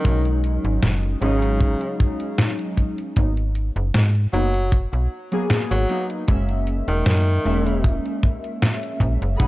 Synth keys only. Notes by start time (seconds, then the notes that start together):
0.04 F#3 G#3 C#4 D#4
1.21 F#3 G#3 C#4 D#4
3.16 F#3 A#3 B3 D#4
4.33 F#3 A#3 B3 D#4
5.31 F#3 A#3 B3 G#4
5.89 F#3 A#3 B3 D#4
6.27 G#3 A#3 C#4 E5
7.44 G#3 A#3 C#4 E5
9.40 F#3 G#3 C#4 D#4